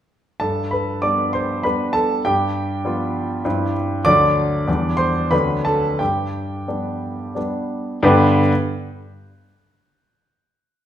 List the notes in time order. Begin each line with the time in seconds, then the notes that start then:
0.40 G2 A4 A5
0.71 B4 B5
1.02 G3 B3 D4 D5 D6
1.33 C5 C6
1.63 G3 B3 D4 B4 B5
1.93 A4 A5
2.25 G2 G4 G5
2.85 G3 B3 F4
3.45 G2 G3 C4 E4
4.05 D2 F#3 D4 D5 D6
4.67 E2 G3 B3 D4
4.97 C5 C6
5.31 D2 F#3 C4 D4 B4 B5
5.65 A4 A5
5.99 G2 G4 G5
6.68 G3 B3 D4
7.35 G3 B3 D4
8.03 G2 D3 B3 D4 G4 B4